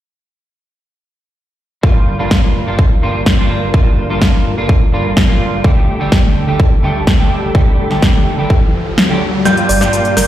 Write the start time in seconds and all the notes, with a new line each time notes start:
1.83 G2 D3 G3 A#3 D4 F4 A#4, kick
2.19 G2 G3 A#3 D4 F4
2.31 kick, snare
2.66 G2 G3 A#3 D4 F4
2.79 kick
3.02 G2 G3 A#3 D4 F4
3.26 kick, snare
3.38 G2 G3 A#3 D4 F4
3.73 G2 G3 A#3 D4 F4, kick
4.09 G2 G3 A#3 D4 F4
4.22 kick, snare
4.57 G2 G3 A#3 D4 F4
4.69 kick
4.92 G2 G3 A#3 D4 F4
5.17 kick, snare
5.28 G2 G3 A#3 D4 F4
5.64 D2 D3 G3 A3 D4 G4 A4, kick, riser
6.00 D3 G3 A3 D4 G4
6.12 kick, snare
6.47 D3 G3 A3 D4 G4
6.60 kick
6.83 D3 G3 A3 D4 G4
7.07 kick, snare
7.19 D3 G3 A3 D4 G4
7.54 D3 G3 A3 D4 G4, kick
7.90 D3 G3 A3 D4 G4, snare
8.02 kick, snare
8.37 D3 G3 A3 D4 G4
8.50 kick
8.98 snare
9.09 D3 G3 A3 D4 G4
9.45 G2 G3 A#3 D4 F4 G4 A#4 D5 G5 G6, snare, closed hi-hat, riser, shaker
9.57 closed hi-hat
9.69 G1 D5, open hi-hat, shaker
9.81 G2 G3 A#3 D4 F4 G4 D5 G5 G6, snare, closed hi-hat, shaker
9.93 closed hi-hat, shaker
10.05 closed hi-hat
10.17 G1 A#3 F4 G4 A#4 D5 G5 G6, snare, open hi-hat, shaker